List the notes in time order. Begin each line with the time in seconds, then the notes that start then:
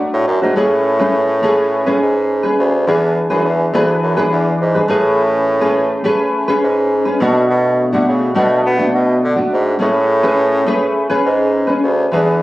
Already playing: A3 D4 F#4
0.13 A2
0.27 F#2
0.42 G#2 A3 D4 F#4
0.56 A2 A3 C#4 G#4 B4
0.99 A3 C#4 G#4 B4
1.43 A3 C#4 G#4 B4
1.86 C#4 G#4 B4
2.01 G#2
2.43 C#4 G#4 B4
2.59 D2
2.87 E2 E3 D4 G#4 B4
3.30 F#2 E3 D4 G#4 B4
3.45 E2
3.73 D2 E3 D4 G#4 B4
4.03 F#2
4.17 E3 D4 G#4 B4
4.32 E2
4.60 G#2
4.75 D4 G#4 B4
4.88 A2 A3 C#4 G#4 B4
5.61 A3 C#4 G#4 B4
6.04 A3 C#4 G#4 B4
6.48 C#4 G#4 B4
6.63 G#2
7.05 C#4 G#4 B4
7.20 B2 A3 D4 F#4
7.50 B2
7.93 B2 D3 A3 D4 F#4
8.08 C#3
8.35 B2 A3 D4 F#4
8.66 B3
8.79 B2 A3 D4 F#4
8.95 B2
9.24 D3
9.36 A3 D4 F#4
9.53 G#2
9.79 A2 A3 C#4 G#4 B4
10.23 A3 C#4 G#4 B4
10.66 A3 C#4 G#4 B4
11.10 C#4 G#4 B4
11.26 G#2
11.67 C#4 G#4 B4
11.83 D2
12.12 E2 E3 D4 G#4 B4